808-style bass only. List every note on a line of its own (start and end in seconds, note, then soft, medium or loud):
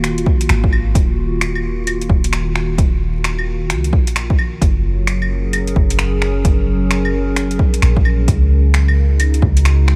0.00 0.25 D#1 medium
0.49 0.94 G#1 medium
2.10 2.77 D#1 loud
2.78 3.72 D#1 medium
3.70 3.94 C#2 medium
3.93 4.61 A#1 medium
4.61 5.75 F#1 medium
5.76 6.44 F#1 loud
6.45 7.58 F#1 medium
7.82 8.27 A#1 medium
8.28 9.41 C#2 loud
9.42 9.96 C#2 loud